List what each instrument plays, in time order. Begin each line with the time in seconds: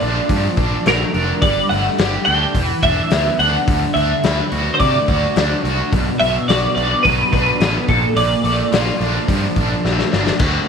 Already playing: overdriven electric guitar A#2 A3 F4, clean electric guitar D5
0.01 picked electric bass A#1, overdriven electric guitar D4, open hi-hat
0.29 picked electric bass G2, overdriven electric guitar F3, kick, open hi-hat
0.57 picked electric bass A#1, overdriven electric guitar D4, kick, open hi-hat
0.85 picked electric bass A#1, overdriven electric guitar A3, clean electric guitar A#4, snare, open hi-hat
1.14 picked electric bass F1, overdriven electric guitar D4, open hi-hat
1.42 picked electric bass G1, overdriven electric guitar G3, clean electric guitar D5, kick, open hi-hat
1.69 picked electric bass G1, overdriven electric guitar A3, clean electric guitar F#5, open hi-hat
1.98 picked electric bass G1, overdriven electric guitar G4, snare, open hi-hat
2.25 picked electric bass D2, overdriven electric guitar D4, clean electric guitar G5, open hi-hat
2.55 picked electric bass E1, overdriven electric guitar E3, kick, open hi-hat
2.68 clean electric guitar F#5
2.83 picked electric bass E1, overdriven electric guitar D4, clean electric guitar E5, kick, open hi-hat
3.11 picked electric bass D2, overdriven electric guitar B3, snare, open hi-hat
3.39 picked electric bass D2, overdriven electric guitar D4, clean electric guitar F#5, open hi-hat
3.68 picked electric bass D2, overdriven electric guitar D3, kick, open hi-hat
3.94 picked electric bass D2, overdriven electric guitar D4, clean electric guitar E5, open hi-hat
4.24 picked electric bass D2, overdriven electric guitar B4, snare, open hi-hat
4.52 picked electric bass D2, overdriven electric guitar F#4, open hi-hat
4.74 clean electric guitar C5
4.80 picked electric bass C3, overdriven electric guitar A3, clean electric guitar D5, kick, open hi-hat
5.08 picked electric bass D2, overdriven electric guitar F#4, kick, open hi-hat
5.36 picked electric bass D2, overdriven electric guitar D4, snare, open hi-hat
5.64 picked electric bass C2, overdriven electric guitar F#4, open hi-hat
5.92 picked electric bass B1, overdriven electric guitar B2, kick, open hi-hat
6.20 picked electric bass B1, overdriven electric guitar B3, clean electric guitar E5, open hi-hat
6.48 picked electric bass B1, overdriven electric guitar F#4, clean electric guitar D5, snare, open hi-hat
6.75 picked electric bass B1, overdriven electric guitar D4, clean electric guitar D5, open hi-hat
7.03 picked electric bass B1, overdriven electric guitar F#3, clean electric guitar B4, kick, open hi-hat
7.32 picked electric bass B1, overdriven electric guitar D4, clean electric guitar B4, kick, open hi-hat
7.60 picked electric bass A1, overdriven electric guitar B3, snare, open hi-hat
7.88 picked electric bass A#1, overdriven electric guitar A#2, clean electric guitar A4, kick, open hi-hat
8.16 picked electric bass A#1, overdriven electric guitar A#2, clean electric guitar D5, open hi-hat
8.44 picked electric bass A#1, overdriven electric guitar A3, open hi-hat
8.72 picked electric bass A#1, overdriven electric guitar F4, snare, open hi-hat
9.00 picked electric bass A#1, overdriven electric guitar D4, open hi-hat
9.28 picked electric bass G2, overdriven electric guitar F3, kick, open hi-hat
9.56 picked electric bass A#1, overdriven electric guitar D4, kick, open hi-hat
9.85 picked electric bass A#1, overdriven electric guitar A3, snare
9.99 snare
10.12 picked electric bass G1, overdriven electric guitar D4, snare
10.27 snare
10.39 picked electric bass D2, overdriven electric guitar D3 A3 C4 F#4, kick, crash